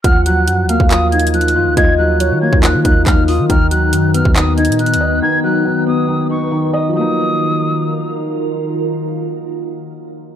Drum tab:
HH |x-----x-----x-----x-----x-----x-x-x-x-x-x-------|x-----------x-----------x-----x-----x-----o-----|x-----x-----x-----x-----x-----x-x-x-x-x-x-------|------------------------------------------------|
CP |------------------------x-----------------------|------------------------x-----------x-----------|------------------------x-----------------------|------------------------------------------------|
BD |o--------------------o--------------------------|o--------------------o--------o-----o-----------|o--------------------o--------------------------|------------------------------------------------|

HH |------------------------------------------------|------------------------------------------------|
CP |------------------------------------------------|------------------------------------------------|
BD |------------------------------------------------|------------------------------------------------|